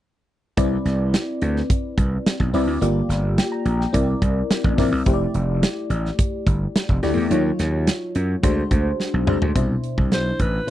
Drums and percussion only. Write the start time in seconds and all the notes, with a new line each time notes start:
0.57 kick, closed hi-hat
0.86 snare, closed hi-hat
1.14 snare, closed hi-hat
1.42 closed hi-hat
1.56 snare
1.70 kick, closed hi-hat
1.98 kick, closed hi-hat
2.26 snare, closed hi-hat
2.40 kick
2.54 open hi-hat
2.82 closed hi-hat
3.10 snare, closed hi-hat
3.38 snare, closed hi-hat
3.66 closed hi-hat
3.81 snare
3.94 kick, closed hi-hat
4.22 kick, closed hi-hat
4.51 snare, closed hi-hat
4.64 kick
4.78 kick, snare, open hi-hat
5.06 kick, closed hi-hat
5.34 closed hi-hat
5.63 snare, closed hi-hat
5.90 closed hi-hat
6.05 snare
6.19 kick, closed hi-hat
6.47 kick, closed hi-hat
6.76 snare, closed hi-hat
6.89 kick
7.03 snare, open hi-hat
7.31 closed hi-hat
7.59 snare, closed hi-hat
7.87 snare, closed hi-hat
8.15 closed hi-hat
8.43 kick, closed hi-hat
8.71 kick, closed hi-hat
9.00 snare
9.27 mid tom
9.42 floor tom
9.56 kick, closed hi-hat
9.84 closed hi-hat
9.98 kick
10.12 snare, closed hi-hat
10.39 kick, closed hi-hat